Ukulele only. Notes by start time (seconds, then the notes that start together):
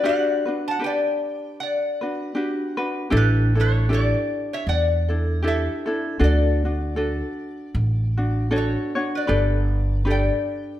0.04 D4 F#4 G4 B4
0.46 D4 F#4 B4
0.80 D4 G4 B4
2.01 D4 F#4 B4
2.35 D4 F#4 G4 B4
2.77 D4 F#4 B4
3.10 D4 E4 G4 A4
3.55 D4 E4 A4
3.89 D4 E4 G4 A4
5.08 D4 E4 A4
5.42 D4 E4 G4 A4
5.86 D4 E4 A4
6.19 D4 F#4 A4
6.65 D4 F#4
6.96 D4 F#4 A4
8.18 D4 F#4
8.51 D4 F#4 A4 C#5
8.95 D4 F#4 C#5
9.27 D4 G4 A4 B4
10.05 D4 G4 A4 B4